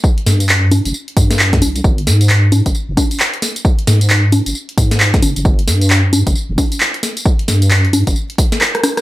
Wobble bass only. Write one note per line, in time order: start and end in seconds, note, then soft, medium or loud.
0.26 0.81 G2 loud
0.85 0.92 G1 medium
1.17 1.63 G2 medium
1.62 1.81 C2 medium
1.84 2.08 G#1 loud
2.07 2.61 G#2 loud
2.66 2.73 G#1 medium
2.89 2.95 F#1 medium
3.87 4.42 G#2 loud
4.46 4.53 G#1 medium
4.77 5.20 G#2 medium
5.23 5.34 G1 medium
5.36 5.43 G1 medium
5.45 5.69 G1 loud
5.68 6.22 G2 loud
6.27 6.34 G1 medium
6.49 6.56 F1 medium
7.48 8.03 G2 loud
8.07 8.14 G1 medium